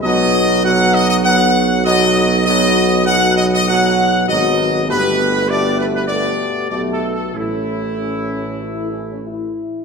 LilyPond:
<<
  \new Staff \with { instrumentName = "Trumpet section" } { \time 4/4 \key b \mixolydian \tempo 4 = 99 dis''4 fis''8 dis''16 dis''16 fis''4 dis''4 | dis''4 fis''8 dis''16 dis''16 fis''4 dis''4 | b'4 d''8 b'16 b'16 d''4 \tuplet 3/2 { d''8 a'8 a'8 } | e'2. r4 | }
  \new Staff \with { instrumentName = "French horn section" } { \time 4/4 \key b \mixolydian << { fis'4 fis'4 fis'4 fis'4 | fis'4 fis'4 fis'4 fis'4 | g'4 g'4 g'4 g'8 fis'8 | e'4 cis'4 e'8 cis'16 cis'16 e'4 | } \\ { b4 b4 b4 b4 | b4 b4 b4 b4 | b4 b4 b4 b4 | cis'4 r2. | } >> }
  \new Staff \with { instrumentName = "Trombone section" } { \clef bass \time 4/4 \key b \mixolydian <b, fis>4 <b, fis>4 <b, fis>4 <b, fis>4 | <b, fis>4 <b, fis>4 <b, fis>4 <b, fis>4 | <b, a>4 <b, a>4 <b, a>4 <b, a>4 | <a, a>2.~ <a, a>8 r8 | }
  \new Staff \with { instrumentName = "Tuba" } { \clef bass \time 4/4 \key b \mixolydian b,,1~ | b,,2. gis,,4 | g,,2~ g,,8 r8 b,,4 | a,,2.~ a,,8 r8 | }
>>